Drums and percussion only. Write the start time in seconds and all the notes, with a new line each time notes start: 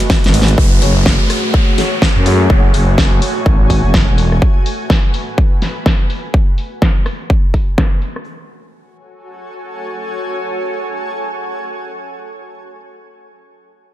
0.00 closed hi-hat
0.10 kick, snare, open hi-hat, ride
0.24 snare, closed hi-hat
0.34 open hi-hat, ride
0.42 snare
0.48 closed hi-hat
0.58 kick
0.82 open hi-hat
1.06 kick, snare
1.30 cross-stick, open hi-hat
1.54 kick
1.78 snare, open hi-hat
2.02 kick, snare
2.26 open hi-hat
2.50 kick
2.74 open hi-hat
2.98 kick, snare
3.22 open hi-hat
3.46 kick
3.70 kick, open hi-hat
3.94 kick, cross-stick, snare, open hi-hat
4.18 open hi-hat
4.32 cross-stick
4.42 kick
4.66 open hi-hat
4.90 kick, snare
5.14 open hi-hat
5.38 kick
5.62 snare, open hi-hat
5.86 kick, snare
6.10 open hi-hat
6.34 kick
6.58 open hi-hat
6.82 kick, snare
7.06 cross-stick, open hi-hat
7.30 kick
7.54 kick, open hi-hat
7.78 kick, cross-stick, snare
8.02 open hi-hat
8.16 cross-stick